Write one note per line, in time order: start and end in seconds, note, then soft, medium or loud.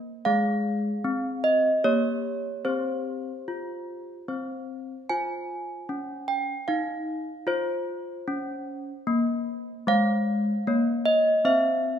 0.00 0.10 A#3 medium
0.00 0.22 A#4 soft
0.00 0.22 C5 medium
0.25 0.89 G#3 medium
0.25 1.79 G#4 soft
0.25 1.40 F5 medium
1.04 1.68 C4 medium
1.44 1.82 D#5 medium
1.84 2.49 A#3 medium
1.84 2.61 G4 soft
1.84 2.61 C#5 medium
2.65 3.30 C4 soft
2.65 4.24 G4 soft
2.65 4.24 C5 medium
3.48 4.12 F4 soft
4.28 4.93 C4 soft
4.28 5.06 C5 soft
5.09 5.74 F4 soft
5.09 7.45 C5 soft
5.09 6.26 G#5 medium
5.89 6.53 C#4 soft
6.28 6.67 G5 medium
6.68 7.32 D#4 soft
6.68 7.45 F5 medium
7.47 8.11 F4 medium
7.47 9.82 C5 medium
8.28 8.90 C#4 medium
9.07 9.71 A#3 medium
9.87 10.50 G#3 medium
9.87 10.62 C5 soft
9.87 11.02 F5 medium
10.67 11.30 A#3 medium
10.67 11.42 C#5 soft
11.06 11.44 D#5 medium
11.45 11.99 C4 medium
11.45 11.99 C5 soft
11.45 11.99 E5 medium